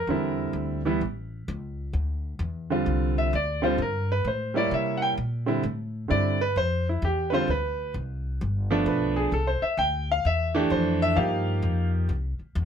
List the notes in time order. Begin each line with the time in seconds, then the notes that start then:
Already playing: A#4
0.07 E2 D3 G3 C4 E4
0.53 D2
0.85 E3 G3 B3 E4
1.01 A1
1.48 C#2
1.93 D2
2.39 E2
2.70 D3 G3 C4 F4
2.86 C2
3.18 E5
3.33 D2 D5
3.62 D3 G3 C4 F4 C5
3.78 G2 A#4
4.12 B4
4.24 A2 C5
4.54 G3 A#3 E4 C#5 D5
4.71 C3 E5
4.97 F#5
5.02 G5
5.18 A#2
5.46 D3 G3 C4 E4
5.63 A2
6.08 G2 D3 G3 C4 E4 D5
6.41 B4
6.56 F2 C5
6.89 E4
7.02 E2 G4
7.30 D3 G3 C4 F4 B4
7.34 C5
7.48 D2 B4
7.94 C2
8.41 G1
8.70 F3 A3 B3 D4
8.86 B1 B4
9.16 G#4
9.32 C2 A4
9.47 C5
9.62 E5, muted upright bass stroke
9.77 D2 G5
10.12 F5
10.25 E2 E5
10.55 E3 A3 D4 G4
10.70 F2 C5
11.02 E5
11.16 G2 F3 A#3 D#4 G4 F5
11.62 F2
12.09 C2
12.39 muted upright bass stroke
12.55 E2